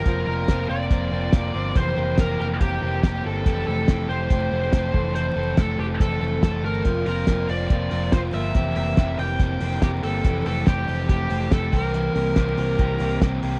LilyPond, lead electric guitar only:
\new Staff \with { instrumentName = "Lead electric guitar" } { \time 4/4 \key c \mixolydian \tempo 4 = 141 bes'8 bes'4 d''2~ d''8 | c''4 bes'8 bes'8 g'4 g'8 a'8~ | a'8 a'4 c''2~ c''8 | c''4 a'8 g'8 a'4 a'8 bes'8~ |
bes'8 bes'4 d''4. c''8 e''8~ | e''8 e''4 g''4. g'8 a'8~ | a'8 a'8 g'4 g'4 a'8 bes'8~ | bes'2. r4 | }